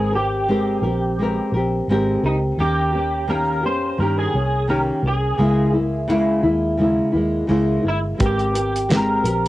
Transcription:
Already playing: G#1 G#3 C4 G#4 A#4
0.12 C4 G4 A#4
0.48 G#3 C4 G4 A#4
0.82 A#1 G4 A#4
0.87 C4
1.19 G#3 C4 G4 A#4
1.52 A#1 A#4
1.56 C4 G4
1.88 G#1 G#3 C4 G4
1.92 A#4
2.23 C#2 C4 D#4 G4 A#4
2.58 D#2 D#3 A#3 C#4 G4
2.93 A#3 C#4 G4
3.28 D#3 A#3 C#4 G4 A#4
3.63 F2 A#3 C#4 G4 C5
3.98 G2 D#3 A#3 C#4 A#4
4.02 G4
4.19 G#4
4.34 C2 A#3 C#4
4.68 D#3 A#3 C#4 G4 A#4
5.03 C2 A#3 C#4
5.08 G#4
5.38 C#2 C#3 G#3 A#3 E4
5.73 A#3 E4
5.77 G#3
6.08 C#3 G#3 A#3 E4
6.43 D#2 G#3 A#3 E4
6.77 C#3 G#3 A#3 E4
7.12 D#2 A#3 E4
7.16 G#3
7.47 C#2 C#3 G#3 A#3 E4
7.82 G1 A#3 E4
7.86 G#3 E4
8.18 G#1 G#3 C4 G4 A#4, kick, closed hi-hat
8.26 G4
8.39 closed hi-hat
8.54 C4 G4 A#4, closed hi-hat
8.76 closed hi-hat
8.89 G#3 C4 G4 A#4, snare, closed hi-hat
8.97 A#4
9.24 A#1 G4 A#4, closed hi-hat
9.28 C4

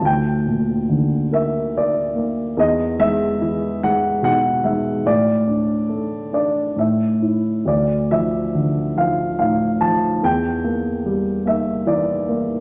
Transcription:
0.02 D2 G5
0.46 A#2
0.89 D3
1.32 A#4 E5
1.77 D5
2.15 A#3
2.57 E2 D#5
2.99 G#3 E5
3.41 E3
3.83 G#3 F#5
4.22 B2 F#5
4.64 G#3 E5
5.05 A2 D5
5.47 D4
5.89 A3
6.33 D4 D5
6.76 A2 E5
7.22 E4
7.65 D2 D5
8.11 F3 E5
8.55 D3
8.96 F3 F5
9.38 A2 F5
9.81 F3 A5
10.23 E2 G5
10.64 A#3
11.06 G3
11.46 A#3 E5
11.86 E3 D5
12.28 A#3

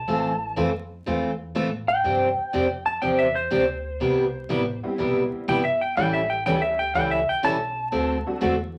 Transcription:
Already playing: A5
0.08 A1 E3 A3 C4 F4 A4
0.56 F2 E3 A3 C4 F4 A4
1.06 E2 E3 A3 C4 F4 A4
1.55 A2 E3 A3 C4 F4 A4
1.88 G5
2.04 G2 C3 F3 C4 D4 G4
2.38 muted upright bass stroke
2.53 F2 C3 F3 C4 D4 G4
2.86 A5
3.02 E2 C3 F3 C4 D4 G4 G5
3.19 E5
3.35 C5
3.51 D2 C3 F3 C4 D4 G4
4.00 C2 C3 G3 B3 E4 G4
4.49 A1 C3 G3 B3 E4 G4
4.83 G3 B3 C4 E4 G4, muted upright bass stroke
4.98 B1 C3 G3 B3 E4 G4
5.33 muted upright bass stroke
5.48 G1 C3 G3 B3 E4 G4 G5
5.65 E5
5.81 G5
5.97 A1 E3 G3 A3 C#4 E4 G4 A4 G5
6.13 E5
6.30 G5
6.46 D2 E3 G3 A3 C#4 E4 G4 A4 G5
6.62 E5
6.79 G5
6.94 C#2 E3 G3 C#4 E4 A4 G5
7.11 E5
7.29 G5, muted upright bass stroke
7.43 B1 E3 G3 C#4 E4 A4 A5
7.92 D2 D3 A3 C4 F#4 A4
8.26 F#3 A3 C4 D4 F#4, muted upright bass stroke
8.41 E2 D3 A3 C4 F#4 A4

